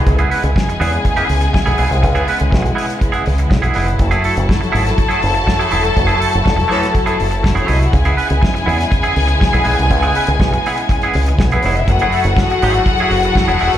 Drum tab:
HH |xxox-xoxxxox-xox|xxox-xoxxxox-xox|xxox-xoxxxox-xox|xxox-xoxxxox-xox|
SD |----o-------o---|----o-------o---|----o--o----o---|----o--o----o---|
BD |o---o---o---o---|o---o---o---o---|o---o---o---o---|o---o---o---o---|

HH |xxox-xoxxxox-xox|xxox-xoxxxox-xox|xxox-xoxxxox-xox|
SD |----o--o----o---|----o-------o---|----o-------o---|
BD |o---o---o---o---|o---o---o---o---|o---o---o---o---|